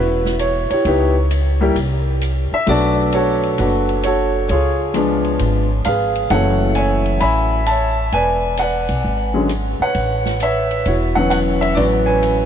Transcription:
0.00 0.67 E1 medium
0.00 0.31 B3 medium
0.00 0.31 C#4 medium
0.00 0.72 E4 medium
0.00 0.83 F#4 soft
0.00 0.41 B4 medium
0.25 snare soft
0.39 0.69 C#5 medium
0.39 hi-hat pedal soft
0.39 ride medium
0.70 0.85 E4 medium
0.70 0.86 G4 medium
0.70 1.72 C#5 medium
0.70 muted upright bass stroke soft
0.70 ride soft
0.85 1.72 C#2 medium
0.85 1.13 B3 medium
0.85 1.13 D#4 medium
0.85 1.14 E4 medium
0.85 1.14 G4 medium
0.85 ride medium
1.31 hi-hat pedal medium
1.31 ride medium
1.61 1.74 G3 medium
1.61 1.75 A#3 medium
1.61 1.75 E4 medium
1.61 1.75 G4 medium
1.75 2.48 C2 medium
1.75 ride medium
2.21 hi-hat pedal medium
2.21 ride medium
2.52 2.68 E5 medium
2.52 muted upright bass stroke soft
2.66 3.54 B1 medium
2.66 3.94 F#3 medium
2.66 3.95 A3 medium
2.66 3.95 B3 medium
2.66 3.59 D4 medium
2.66 3.13 F#4 medium
2.66 3.13 A4 medium
2.66 3.10 D5 loud
2.66 ride medium
3.12 3.58 F#4 medium
3.12 4.01 A4 medium
3.12 3.60 C#5 medium
3.12 hi-hat pedal soft
3.12 ride medium
3.43 ride soft
3.58 4.46 F#1 medium
3.58 4.46 D4 medium
3.58 4.04 F#4 medium
3.58 4.01 B4 medium
3.58 ride medium
3.89 ride soft
4.03 4.47 F#4 medium
4.03 4.47 A4 medium
4.03 4.47 C#5 medium
4.03 hi-hat pedal soft
4.03 ride medium
4.49 5.36 C#2 medium
4.49 5.37 F4 medium
4.49 5.37 G#4 medium
4.49 5.36 C#5 medium
4.49 ride medium
4.94 5.64 F3 medium
4.94 5.65 G#3 medium
4.94 5.64 B3 medium
4.94 5.65 D4 medium
4.94 hi-hat pedal soft
4.94 ride medium
5.24 ride soft
5.39 5.82 G#1 medium
5.39 ride medium
5.84 6.28 G#1 medium
5.84 6.29 G#4 medium
5.84 6.29 B4 medium
5.84 6.32 F5 medium
5.84 hi-hat pedal medium
5.84 ride medium
6.15 ride soft
6.30 7.18 F#1 medium
6.30 7.58 E3 medium
6.30 7.59 F#3 medium
6.30 7.59 A3 medium
6.30 7.59 C#4 medium
6.30 7.19 A4 medium
6.30 6.76 C#5 medium
6.30 6.78 F#5 medium
6.30 ride medium
6.75 7.64 C#5 medium
6.75 7.20 E5 medium
6.75 7.20 G#5 medium
6.75 hi-hat pedal medium
6.75 ride medium
7.06 ride soft
7.20 8.09 A1 medium
7.20 7.67 E5 medium
7.20 8.09 G#5 medium
7.20 7.68 B5 medium
7.20 ride medium
7.66 8.11 C#5 medium
7.66 8.10 E5 medium
7.66 8.14 A5 medium
7.66 hi-hat pedal soft
7.66 ride medium
8.12 8.85 E1 medium
8.12 8.59 B4 medium
8.12 8.60 D5 medium
8.12 8.60 G#5 loud
8.12 ride medium
8.57 9.46 B4 medium
8.57 9.47 D5 medium
8.57 9.46 F#5 medium
8.57 hi-hat pedal medium
8.57 ride medium
8.89 9.03 B1 medium
8.89 ride medium
9.05 9.76 G#1 medium
9.34 9.47 D3 medium
9.34 9.48 F#3 medium
9.34 9.48 G#3 medium
9.34 9.48 C#4 medium
9.49 hi-hat pedal soft
9.49 ride medium
9.80 10.41 B4 medium
9.80 10.41 C#5 medium
9.80 10.37 F#5 medium
9.80 muted upright bass stroke soft
9.95 10.82 A1 medium
9.95 ride medium
10.25 snare medium
10.40 11.28 B4 medium
10.40 10.84 C#5 medium
10.40 10.84 E5 medium
10.40 hi-hat pedal medium
10.40 ride medium
10.71 ride soft
10.85 11.73 E1 medium
10.85 11.73 E4 medium
10.85 11.73 F#4 soft
10.85 10.93 C#5 medium
10.85 ride medium
11.15 11.73 E3 medium
11.15 11.74 F#3 medium
11.15 11.74 B3 medium
11.15 11.74 C#4 medium
11.15 11.29 F#5 medium
11.30 11.37 F#5 medium
11.30 hi-hat pedal medium
11.30 ride medium
11.61 11.75 E5 medium
11.61 ride soft
11.75 12.46 A1 medium
11.75 12.46 E3 medium
11.75 12.46 F#3 soft
11.75 12.46 B3 soft
11.75 12.46 C#4 medium
11.75 12.46 F#4 medium
11.75 12.06 B4 medium
11.75 11.82 D5 medium
11.75 ride medium
12.06 12.46 B4 medium
12.06 12.46 C#5 medium
12.06 12.46 G#5 medium
12.22 hi-hat pedal medium
12.22 ride medium

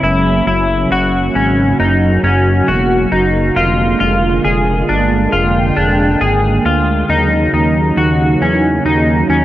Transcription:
0.00 0.42 F#1 medium
0.00 3.52 C#3 medium
0.00 3.52 F#3 medium
0.00 9.45 A#3 medium
0.00 1.76 C#4 medium
0.00 0.46 E4 medium
0.47 0.86 F#1 loud
0.47 0.91 E4 medium
0.91 1.30 F#1 medium
0.91 1.36 F#4 medium
1.35 1.74 G#1 medium
1.35 1.79 C#4 medium
1.79 2.18 F#1 medium
1.79 2.24 D#4 medium
1.79 3.54 F#4 medium
2.23 2.62 F#1 medium
2.23 2.68 C#4 medium
2.68 3.07 E1 medium
2.68 3.12 F#4 medium
3.12 3.51 F#1 medium
3.12 3.56 D#4 medium
3.55 3.95 F1 medium
3.55 7.05 D3 medium
3.55 7.05 G#3 medium
3.55 5.31 F4 medium
3.55 3.99 F4 medium
4.00 4.39 F1 medium
4.00 4.44 F4 medium
4.44 4.84 F1 loud
4.44 4.89 G#4 medium
4.89 5.28 G1 medium
4.89 5.33 D4 medium
5.33 5.72 F1 medium
5.33 5.77 F4 medium
5.33 7.08 G5 medium
5.77 6.16 F1 medium
5.77 6.21 D4 medium
6.21 6.60 G#1 medium
6.21 6.65 G#4 medium
6.65 7.04 D2 medium
6.65 7.09 F4 medium
7.09 7.48 D#2 medium
7.09 9.45 C#3 medium
7.09 9.45 F#3 medium
7.09 9.45 D#4 medium
7.09 7.52 D#4 medium
7.53 7.92 D#2 medium
7.53 7.98 D#4 medium
7.97 8.36 D#2 medium
7.97 8.42 F#4 medium
8.41 8.80 E2 medium
8.41 8.85 C#4 medium
8.85 9.24 D#2 medium
8.85 9.29 D#4 medium
9.29 9.45 D#2 medium
9.29 9.45 C#4 medium

